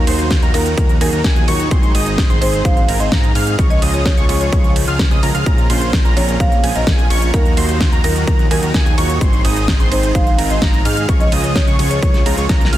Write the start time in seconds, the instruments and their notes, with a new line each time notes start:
Already playing: felt piano D#3 F#3 A#3 F5, analog synth pad D#3 F#3 A#3
0.07 analog synth bass D#2, supersaw synth D#4 F#4 C5, analog synth lead C6, open hi-hat, ride
0.19 closed hi-hat
0.31 kick, snare, closed hi-hat
0.42 analog synth bass D#2, supersaw synth D#4 F#4 A#4, analog synth lead A#5, closed hi-hat
0.54 analog synth bass D#2, felt piano D#3 F#3 A#3 F4, supersaw synth D#4 F#4 A#4, marimba A#4, analog synth lead A#5, open hi-hat, ride
0.66 closed hi-hat
0.78 analog synth bass D#2, supersaw synth D#4 F#4 A#4, analog synth lead A#5, kick, closed hi-hat
0.89 closed hi-hat
1.00 analog synth bass D#2, felt piano D#3 F#3 A#3 D#4, supersaw synth D#4 F#4 G#4, marimba A#4, analog synth lead G#5, open hi-hat, ride
1.13 analog synth bass D#2, supersaw synth D#4 F#4 A#4, analog synth lead A#5, closed hi-hat
1.24 analog synth bass D#2, supersaw synth D#4 F#4 G#4, analog synth lead G#5, kick, snare, closed hi-hat
1.36 closed hi-hat
1.47 analog synth bass D#2, felt piano G#2 D#3 F#3 A#3 F4, supersaw synth D#4 F#4 C#5, analog synth lead C#6, open hi-hat, ride
1.60 closed hi-hat
1.70 analog synth bass G#1, felt piano G#2 D#3 G#3 C4 D#4, analog synth pad G#3 C4, supersaw synth D#4 G#4 C5, analog synth lead C6, kick, closed hi-hat
1.83 closed hi-hat
1.95 analog synth bass G#1, supersaw synth D#4 G#4 D#5, analog synth lead D#6, open hi-hat, ride
2.06 closed hi-hat
2.18 kick, snare, closed hi-hat
2.30 analog synth bass G#1, supersaw synth D#4 G#4 C5, analog synth lead C6, closed hi-hat
2.40 analog synth bass G#1, felt piano G#2 D#3 G#3 C4 D#4, supersaw synth D#4 G#4 C5, marimba C5, analog synth lead C6, open hi-hat, ride
2.53 closed hi-hat
2.65 analog synth bass G#1, supersaw synth D#4 G#4 C5, marimba F5, analog synth lead C6, kick, closed hi-hat
2.77 marimba F5, closed hi-hat
2.88 analog synth bass G#1, supersaw synth D#4 G#4 A#4, analog synth lead A#5, open hi-hat, ride
3.00 analog synth bass G#1, supersaw synth D#4 G#4 C5, marimba D#5, analog synth lead C6, closed hi-hat
3.12 analog synth bass G#2, supersaw synth D#4 G#4 A#4, analog synth lead A#5, kick, snare, closed hi-hat
3.24 closed hi-hat
3.35 analog synth bass G#2, supersaw synth D#4 G#4 F5, analog synth lead F6, open hi-hat, ride
3.47 closed hi-hat
3.58 analog synth bass C#2, analog synth pad C#3 G#3 F4, felt piano F3 G#3 C#4 G#4, supersaw synth F4 G#4 C#5, analog synth lead C#6, kick, closed hi-hat
3.70 marimba D#5, closed hi-hat
3.82 analog synth bass C#2, supersaw synth F4 G#4 D#5, analog synth lead D#6, open hi-hat, ride
3.94 marimba C#5, closed hi-hat
4.06 marimba C#5, kick, snare, closed hi-hat
4.17 analog synth bass C#2, supersaw synth F4 G#4 C#5, analog synth lead C#6, closed hi-hat
4.28 analog synth bass C#2, felt piano F3 G#3 C#4 G#4, supersaw synth F4 G#4 C#5, analog synth lead C#6, open hi-hat, ride
4.41 marimba C#5, closed hi-hat
4.52 analog synth bass C#2, supersaw synth F4 G#4 C#5, analog synth lead C#6, kick, closed hi-hat
4.64 closed hi-hat
4.76 open hi-hat, ride
4.88 analog synth bass C#2, supersaw synth F4 G#4 F5, analog synth lead F6, closed hi-hat
4.99 kick, snare, closed hi-hat
5.11 analog synth bass C#2, felt piano F3 G#3 C#4 G#4, supersaw synth F4 G#4 D#5, analog synth lead D#6, closed hi-hat
5.23 analog synth bass C#2, supersaw synth F4 G#4 A#4, analog synth lead A#5, open hi-hat, ride
5.35 analog synth bass C#2, supersaw synth F4 G#4 F5, analog synth lead F6, closed hi-hat
5.45 analog synth bass A#1, felt piano C#3 F3 A#3 C#4, analog synth pad F3 A#3, supersaw synth C#4 F4 A#4, analog synth lead A#5, kick, closed hi-hat
5.58 closed hi-hat
5.70 analog synth bass A#1, supersaw synth C#4 F4 C5, analog synth lead C6, open hi-hat, ride
5.82 closed hi-hat
5.93 kick, snare, closed hi-hat
6.05 analog synth bass A#1, supersaw synth C#4 F4 A#4, analog synth lead A#5, closed hi-hat
6.15 analog synth bass A#1, felt piano C#3 F3 A#3 C4, supersaw synth C#4 F4 A#4, marimba C#5, analog synth lead A#5, open hi-hat, ride
6.29 closed hi-hat
6.40 analog synth bass A#1, supersaw synth C#4 F4 A#4, marimba F5, analog synth lead A#5, kick, closed hi-hat
6.52 marimba F5, closed hi-hat
6.63 analog synth bass A#1, supersaw synth C#4 F4 G#4, analog synth lead G#5, open hi-hat, ride
6.75 analog synth bass A#1, supersaw synth C#4 F4 A#4, marimba D#5, analog synth lead A#5, closed hi-hat
6.87 analog synth bass A#1, supersaw synth C#4 F4 G#4, analog synth lead G#5, kick, snare, closed hi-hat
6.99 closed hi-hat
7.10 analog synth bass A#1, supersaw synth C#4 F4 C#5, analog synth lead C#6, open hi-hat, ride
7.22 closed hi-hat
7.33 analog synth bass D#2, felt piano D#3 F#3 A#3 F5, analog synth pad D#3 F#3, supersaw synth D#4 F#4 A#4, marimba A#4, analog synth lead A#5, kick, closed hi-hat
7.46 closed hi-hat
7.57 analog synth bass D#2, supersaw synth D#4 F#4 C5, analog synth lead C6, open hi-hat, ride
7.69 closed hi-hat
7.81 kick, snare, closed hi-hat
7.92 analog synth bass D#2, supersaw synth D#4 F#4 A#4, analog synth lead A#5, closed hi-hat
8.03 analog synth bass D#2, felt piano D#3 F#3 A#3 F4, supersaw synth D#4 F#4 A#4, marimba A#4, analog synth lead A#5, open hi-hat, ride
8.16 closed hi-hat
8.27 analog synth bass D#2, supersaw synth D#4 F#4 A#4, analog synth lead A#5, kick, closed hi-hat
8.39 closed hi-hat
8.50 analog synth bass D#2, felt piano D#3 F#3 A#3 D#4, supersaw synth D#4 F#4 G#4, marimba A#4, analog synth lead G#5, open hi-hat, ride
8.63 analog synth bass D#2, supersaw synth D#4 F#4 A#4, analog synth lead A#5, closed hi-hat
8.74 analog synth bass D#2, supersaw synth D#4 F#4 G#4, analog synth lead G#5, kick, snare, closed hi-hat
8.86 closed hi-hat
8.97 analog synth bass D#2, felt piano G#2 D#3 F#3 A#3 F4, supersaw synth D#4 F#4 C#5, analog synth lead C#6, open hi-hat, ride
9.10 closed hi-hat
9.20 analog synth bass G#1, felt piano G#2 D#3 G#3 C4 D#4, analog synth pad D#3 G#3 C4, supersaw synth D#4 G#4 C5, analog synth lead C6, kick, closed hi-hat
9.33 closed hi-hat
9.45 analog synth bass G#1, supersaw synth D#4 G#4 D#5, analog synth lead D#6, open hi-hat, ride
9.56 closed hi-hat
9.68 kick, snare, closed hi-hat
9.80 analog synth bass G#1, supersaw synth D#4 G#4 C5, analog synth lead C6, closed hi-hat
9.90 analog synth bass G#1, felt piano G#2 D#3 G#3 C4 D#4, supersaw synth D#4 G#4 C5, marimba C5, analog synth lead C6, open hi-hat, ride
10.03 closed hi-hat
10.15 analog synth bass G#1, supersaw synth D#4 G#4 C5, marimba F5, analog synth lead C6, kick, closed hi-hat
10.27 marimba F5, closed hi-hat
10.38 analog synth bass G#1, supersaw synth D#4 G#4 A#4, analog synth lead A#5, open hi-hat, ride
10.50 analog synth bass G#1, supersaw synth D#4 G#4 C5, marimba D#5, analog synth lead C6, closed hi-hat
10.62 analog synth bass G#1, supersaw synth D#4 G#4 A#4, analog synth lead A#5, kick, snare, closed hi-hat
10.74 closed hi-hat
10.85 analog synth bass G#2, supersaw synth D#4 G#4 F5, analog synth lead F6, open hi-hat, ride
10.97 closed hi-hat
11.07 analog synth bass C#2, analog synth pad C#3 F4, felt piano F3 G#3 C#4 G#4, supersaw synth F4 G#4 C#5, analog synth lead C#6, kick, closed hi-hat
11.20 marimba D#5, closed hi-hat
11.32 analog synth bass C#2, supersaw synth F4 G#4 D#5, analog synth lead D#6, open hi-hat, ride
11.44 marimba C#5, closed hi-hat
11.56 marimba C#5, kick, snare, closed hi-hat
11.67 analog synth bass C#2, supersaw synth F4 G#4 C#5, analog synth lead C#6, closed hi-hat
11.79 analog synth bass C#2, felt piano F3 G#3 C#4 G#4, supersaw synth F4 G#4 C#5, analog synth lead C#6, open hi-hat, ride
11.91 marimba C#5, closed hi-hat
12.02 analog synth bass C#2, supersaw synth F4 G#4 C#5, analog synth lead C#6, kick, closed hi-hat
12.14 snare, closed hi-hat
12.25 analog synth bass C#2, felt piano F3 G#3 C#4 F4, supersaw synth F4 G#4 A#4, analog synth lead A#5, open hi-hat, ride
12.38 analog synth bass C#2, supersaw synth F4 G#4 C#5, analog synth lead C#6, closed hi-hat
12.49 analog synth bass C#2, supersaw synth F4 G#4 A#4, analog synth lead A#5, kick, snare, closed hi-hat
12.61 snare, closed hi-hat
12.72 analog synth bass C#2, felt piano A#2 F3 G#3 C#4 G#4, supersaw synth F4 G#4 F5, analog synth lead F6, open hi-hat, ride